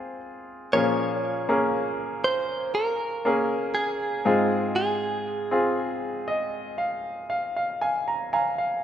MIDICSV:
0, 0, Header, 1, 3, 480
1, 0, Start_track
1, 0, Tempo, 1006711
1, 351, Time_signature, 4, 2, 24, 8
1, 2752, Tempo, 1025641
1, 4187, End_track
2, 0, Start_track
2, 0, Title_t, "Clean electric guitar"
2, 0, Program_c, 0, 27
2, 0, Note_on_c, 0, 72, 75
2, 96, Note_off_c, 0, 72, 0
2, 349, Note_on_c, 0, 73, 89
2, 1052, Note_off_c, 0, 73, 0
2, 1070, Note_on_c, 0, 72, 75
2, 1295, Note_off_c, 0, 72, 0
2, 1310, Note_on_c, 0, 70, 77
2, 1784, Note_off_c, 0, 70, 0
2, 1786, Note_on_c, 0, 68, 68
2, 2263, Note_off_c, 0, 68, 0
2, 2269, Note_on_c, 0, 68, 61
2, 3207, Note_off_c, 0, 68, 0
2, 4187, End_track
3, 0, Start_track
3, 0, Title_t, "Grand piano"
3, 0, Program_c, 1, 0
3, 0, Control_c, 1, 64, 127
3, 0, Note_on_c, 1, 44, 45
3, 0, Note_on_c, 1, 56, 53
3, 0, Note_on_c, 1, 60, 55
3, 0, Note_on_c, 1, 65, 54
3, 0, Note_on_c, 1, 68, 61
3, 91, Note_off_c, 1, 44, 0
3, 92, Note_off_c, 1, 56, 0
3, 313, Note_off_c, 1, 60, 0
3, 314, Note_off_c, 1, 65, 0
3, 316, Note_off_c, 1, 68, 0
3, 349, Note_on_c, 1, 58, 60
3, 350, Note_on_c, 1, 53, 50
3, 352, Note_on_c, 1, 61, 56
3, 353, Note_on_c, 1, 46, 51
3, 355, Note_on_c, 1, 68, 59
3, 357, Control_c, 1, 64, 0
3, 444, Control_c, 1, 64, 127
3, 692, Note_off_c, 1, 58, 0
3, 694, Note_off_c, 1, 61, 0
3, 696, Note_off_c, 1, 68, 0
3, 709, Note_on_c, 1, 58, 62
3, 709, Note_on_c, 1, 61, 56
3, 712, Note_on_c, 1, 68, 64
3, 1510, Note_off_c, 1, 58, 0
3, 1510, Note_off_c, 1, 61, 0
3, 1511, Note_off_c, 1, 68, 0
3, 1550, Note_on_c, 1, 58, 64
3, 1553, Note_on_c, 1, 61, 55
3, 1557, Note_on_c, 1, 68, 73
3, 2011, Note_off_c, 1, 53, 0
3, 2013, Note_off_c, 1, 46, 0
3, 2025, Note_off_c, 1, 68, 0
3, 2027, Note_on_c, 1, 60, 61
3, 2029, Note_off_c, 1, 58, 0
3, 2029, Note_on_c, 1, 44, 52
3, 2029, Note_on_c, 1, 56, 51
3, 2030, Note_on_c, 1, 65, 60
3, 2031, Note_off_c, 1, 61, 0
3, 2032, Note_on_c, 1, 68, 70
3, 2038, Control_c, 1, 64, 0
3, 2119, Control_c, 1, 64, 127
3, 2599, Note_off_c, 1, 60, 0
3, 2600, Note_off_c, 1, 65, 0
3, 2602, Note_off_c, 1, 68, 0
3, 2628, Note_on_c, 1, 60, 52
3, 2629, Note_on_c, 1, 65, 53
3, 2632, Note_on_c, 1, 68, 61
3, 2988, Note_on_c, 1, 75, 61
3, 3210, Note_off_c, 1, 75, 0
3, 3224, Note_on_c, 1, 77, 55
3, 3423, Note_off_c, 1, 60, 0
3, 3424, Note_off_c, 1, 65, 0
3, 3425, Note_off_c, 1, 68, 0
3, 3449, Note_off_c, 1, 77, 0
3, 3466, Note_on_c, 1, 77, 53
3, 3584, Note_off_c, 1, 77, 0
3, 3591, Note_on_c, 1, 77, 52
3, 3704, Note_off_c, 1, 77, 0
3, 3708, Note_on_c, 1, 80, 57
3, 3711, Note_on_c, 1, 77, 45
3, 3824, Note_off_c, 1, 80, 0
3, 3826, Note_off_c, 1, 77, 0
3, 3831, Note_on_c, 1, 82, 53
3, 3932, Note_off_c, 1, 44, 0
3, 3932, Note_off_c, 1, 56, 0
3, 3942, Note_off_c, 1, 82, 0
3, 3949, Note_on_c, 1, 80, 52
3, 3949, Note_on_c, 1, 82, 58
3, 3952, Note_on_c, 1, 77, 45
3, 4061, Note_off_c, 1, 77, 0
3, 4065, Note_off_c, 1, 80, 0
3, 4068, Note_on_c, 1, 77, 46
3, 4174, Note_off_c, 1, 82, 0
3, 4187, Note_off_c, 1, 77, 0
3, 4187, End_track
0, 0, End_of_file